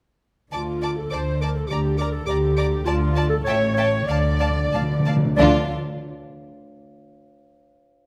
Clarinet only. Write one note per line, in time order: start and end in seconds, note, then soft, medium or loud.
0.53 0.94 F4 medium
0.98 1.10 A4 soft
1.11 1.42 C5 medium
1.41 1.55 A#4 soft
1.54 1.69 A4 medium
1.67 1.99 G4 medium
1.97 2.11 A#4 medium
2.12 2.28 A4 medium
2.26 2.84 G4 medium
2.85 3.29 F4 medium
3.30 3.37 A4 medium
3.44 3.74 C#5 medium
3.74 4.06 C#5 medium
4.07 5.03 D5 medium
5.36 5.64 D5 medium